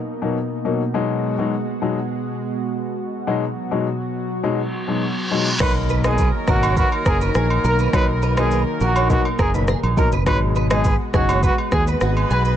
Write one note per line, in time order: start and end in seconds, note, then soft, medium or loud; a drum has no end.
0.00 5.56 B2 medium
0.00 0.90 A#3 medium
0.00 0.90 D#4 medium
0.00 downlifter medium
0.22 0.36 B2 medium
0.22 0.36 F#3 medium
0.22 0.36 A#3 medium
0.22 0.37 D#4 medium
0.65 0.80 B2 medium
0.65 0.81 F#3 medium
0.65 0.81 A#3 medium
0.65 0.81 D#4 medium
0.94 1.35 B2 medium
0.94 1.35 F#3 medium
0.94 3.25 G#3 medium
0.94 1.35 G#3 medium
0.94 1.35 D#4 medium
0.94 5.56 F#4 medium
1.38 1.53 B2 medium
1.38 1.53 F#3 medium
1.38 1.53 G#3 medium
1.38 1.53 D#4 medium
1.82 1.97 B2 medium
1.82 1.97 F#3 medium
1.82 1.97 G#3 medium
1.82 1.97 D#4 medium
3.27 3.43 B2 medium
3.27 5.58 F#3 medium
3.27 3.43 F#3 medium
3.27 3.43 G#3 medium
3.27 3.43 D#4 medium
3.71 3.86 B2 medium
3.71 3.86 F#3 medium
3.71 3.86 G#3 medium
3.71 3.86 D#4 medium
4.43 4.59 B2 medium
4.43 4.59 F#3 medium
4.43 4.59 G#3 medium
4.43 4.59 D#4 medium
4.43 reverse cymbal medium
4.88 5.02 B2 medium
4.88 5.02 F#3 medium
4.88 5.02 G#3 medium
4.88 5.03 D#4 medium
5.31 5.47 B2 medium
5.31 5.47 F#3 medium
5.31 5.47 G#3 medium
5.31 5.47 D#4 medium
5.60 6.30 B1 loud
5.60 6.01 B2 medium
5.60 10.22 D#3 medium
5.60 9.93 F#3 medium
5.60 6.01 F#3 medium
5.60 10.22 A#3 medium
5.60 6.01 A#3 medium
5.60 10.22 D#4 medium
5.60 9.93 D#4 medium
5.60 6.01 D#4 loud
5.60 9.93 A#4 loud
5.60 5.74 B4 loud
5.60 5.71 C#5 medium
5.60 kick loud
5.60 cross-stick medium
5.60 crash medium
5.60 impact medium
5.60 high agogo medium
5.60 shaker medium
5.89 6.00 B4 medium
5.89 shaker medium
6.04 6.19 B2 medium
6.04 6.19 F#3 medium
6.04 6.19 A#3 medium
6.04 6.19 D#4 medium
6.04 6.30 G#4 medium
6.04 6.14 D#5 medium
6.04 cross-stick loud
6.04 high agogo medium
6.04 shaker medium
6.18 6.29 B4 medium
6.18 kick loud
6.18 shaker medium
6.47 6.81 G#1 medium
6.47 6.63 B2 medium
6.47 6.63 F#3 medium
6.47 6.63 A#3 medium
6.47 6.63 D#4 medium
6.47 6.73 F#4 medium
6.47 6.58 A#4 medium
6.47 kick loud
6.47 cross-stick medium
6.47 shaker medium
6.63 6.73 C#5 medium
6.63 high agogo medium
6.63 shaker medium
6.77 6.90 F#4 medium
6.77 6.87 B4 medium
6.77 kick medium
6.77 shaker medium
6.92 high agogo medium
7.05 7.28 F#1 medium
7.05 7.19 G#4 medium
7.05 7.17 A#4 medium
7.05 kick medium
7.05 cross-stick medium
7.05 shaker medium
7.21 7.31 B4 medium
7.21 shaker medium
7.34 7.57 A#1 medium
7.34 7.46 G#4 medium
7.34 cross-stick medium
7.34 shaker medium
7.50 high agogo medium
7.64 7.86 B1 loud
7.64 7.75 A#4 medium
7.64 7.78 A#4 medium
7.64 shaker medium
7.79 7.89 B4 medium
7.79 shaker medium
7.93 8.63 B1 loud
7.93 8.09 B2 medium
7.93 8.09 F#3 medium
7.93 8.09 A#3 medium
7.93 8.09 D#4 loud
7.93 8.07 B4 loud
7.93 8.04 C#5 medium
7.93 kick loud
7.93 cross-stick medium
7.93 high agogo medium
7.93 shaker medium
8.22 8.33 B4 medium
8.22 shaker medium
8.37 8.52 B2 medium
8.37 8.52 F#3 medium
8.37 8.52 A#3 medium
8.37 8.52 D#4 medium
8.37 8.63 G#4 medium
8.37 8.47 D#5 medium
8.37 cross-stick medium
8.37 high agogo medium
8.37 shaker medium
8.51 8.62 B4 medium
8.51 shaker medium
8.80 9.14 A#1 medium
8.80 9.06 F#4 medium
8.80 8.91 A#4 medium
8.80 shaker medium
8.96 9.10 C#5 medium
8.96 high agogo medium
8.96 shaker medium
9.09 9.25 B2 medium
9.09 9.25 F#3 medium
9.09 9.25 A#3 medium
9.09 9.25 D#4 loud
9.09 9.23 F#4 medium
9.09 9.20 B4 medium
9.09 kick medium
9.09 shaker medium
9.25 high agogo medium
9.39 9.73 F#1 medium
9.39 9.52 G#4 medium
9.39 9.49 A#4 medium
9.39 kick medium
9.39 cross-stick medium
9.39 shaker medium
9.54 9.68 B2 medium
9.54 9.68 F#3 medium
9.54 9.68 A#3 medium
9.54 9.69 D#4 medium
9.54 9.64 B4 medium
9.54 shaker medium
9.67 9.79 G#4 medium
9.67 cross-stick medium
9.67 shaker medium
9.83 10.05 A#1 medium
9.83 high agogo medium
9.97 10.13 B2 medium
9.97 10.13 F#3 medium
9.97 10.13 A#3 medium
9.97 10.13 D#4 medium
9.97 10.08 A#4 medium
9.97 10.11 A#4 medium
9.97 kick medium
9.97 shaker medium
10.12 10.26 F#1 medium
10.12 10.22 B4 medium
10.12 shaker medium
10.26 10.96 G#1 loud
10.26 10.67 B2 medium
10.26 12.56 B2 medium
10.26 10.67 F#3 medium
10.26 12.56 G#3 medium
10.26 10.67 G#3 medium
10.26 10.67 D#4 loud
10.26 12.56 F#4 medium
10.26 10.40 B4 loud
10.26 10.37 C#5 medium
10.26 kick loud
10.26 cross-stick medium
10.26 high agogo medium
10.26 shaker medium
10.55 10.66 B4 medium
10.55 shaker medium
10.70 10.85 B2 medium
10.70 10.85 F#3 medium
10.70 10.85 G#3 medium
10.70 10.85 D#4 medium
10.70 10.96 G#4 medium
10.70 10.80 D#5 medium
10.70 cross-stick loud
10.70 high agogo medium
10.70 shaker medium
10.84 10.95 B4 medium
10.84 kick medium
10.84 shaker medium
11.13 11.48 F#1 medium
11.13 11.29 B2 medium
11.13 11.29 F#3 medium
11.13 11.29 G#3 medium
11.13 11.29 D#4 medium
11.13 11.39 F#4 medium
11.13 11.24 G#4 medium
11.13 kick medium
11.13 cross-stick medium
11.13 shaker medium
11.29 11.39 C#5 medium
11.29 high agogo medium
11.29 shaker medium
11.43 12.56 G#3 medium
11.43 12.56 F#4 medium
11.43 11.56 F#4 medium
11.43 12.56 B4 medium
11.43 11.54 B4 medium
11.43 kick medium
11.43 shaker medium
11.58 high agogo medium
11.72 11.94 D#2 medium
11.72 11.83 G#4 medium
11.72 11.85 G#4 medium
11.72 kick medium
11.72 cross-stick medium
11.72 shaker medium
11.87 11.97 B4 medium
11.87 shaker medium
12.01 12.23 G#1 medium
12.01 12.12 F#4 medium
12.01 cross-stick medium
12.01 shaker medium
12.17 high agogo medium
12.30 12.56 B1 medium
12.30 12.41 G#4 medium
12.30 12.44 B4 medium
12.30 shaker medium
12.45 12.55 B4 medium
12.45 shaker medium